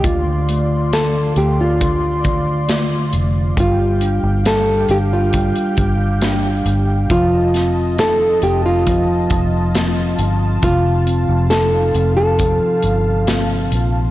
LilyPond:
<<
  \new Staff \with { instrumentName = "Analog synth pad" } { \time 4/4 \key f \mixolydian \tempo 4 = 68 << { <f' c'''>1 | <g' g''>1 | <f' a''>1~ | <f' a''>1 | } \\ { d''1 | f''1 | ees''1 | f''1 | } >> }
  \new Staff \with { instrumentName = "Nylon-string guitar" } { \time 4/4 \key f \mixolydian f'4 a'8 g'16 f'4.~ f'16 r8 | f'4 a'8 g'16 f'4.~ f'16 r8 | f'4 a'8 g'16 f'4.~ f'16 r8 | f'4 a'8. a'4. r8. | }
  \new Staff \with { instrumentName = "Tine electric piano" } { \time 4/4 \key f \mixolydian d8 a4 a8 d4 a4 | g8 d'8 g8 d'8 g4 d'4 | f8 c'8 ees'8 c'8 f4 c'4 | c8 c'8 ees'8 c'8 f4 c'4 | }
  \new Staff \with { instrumentName = "Fingered electric bass" } { \clef bass \time 4/4 \key f \mixolydian d,4. d,2 f,,8 | g,,8. g,,8. g,,8. r16 g,,4 g,,8 | f,,4. f,,4 f,,4 g,,8 | f,,8. f,,8. f,,8. r16 g,,4 bes,,8 | }
  \new DrumStaff \with { instrumentName = "Drums" } \drummode { \time 4/4 <hh bd>8 hh8 <hh sn>8 hh8 <hh bd>8 <hh bd>8 <hh sn>8 hh8 | <hh bd>8 hh8 <hh sn>8 hh8 <hh bd>16 hh16 <hh bd>8 <hh sn>8 hh8 | <hh bd>8 <hh sn>8 <hh sn>8 hh8 <hh bd>8 <hh bd>8 <hh sn>8 hh8 | <hh bd>8 hh8 <hh sn>8 hh8 <hh bd>8 hh8 <hh sn>8 hh8 | }
>>